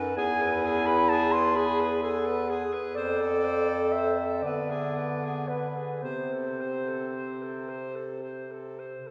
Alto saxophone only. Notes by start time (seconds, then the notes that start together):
Already playing: B4
0.18 G#4
0.42 B4
0.65 G#4
0.88 B4
1.11 G#4
1.34 B4
1.57 G#4
1.80 B4
2.03 G#4
2.26 B4
2.49 G#4
2.73 B4
2.97 C5
3.21 A4
3.44 C5
3.69 A4
3.95 C5
4.19 A4
4.44 B4
4.70 G#4
4.97 B4
5.24 G#4
5.49 B4
5.76 G#4
6.04 C5
6.33 A4
6.61 C5
6.89 A4
7.16 C5
7.43 A4
7.69 C5
7.96 A4
8.23 C5
8.51 A4
8.79 C5
9.07 A4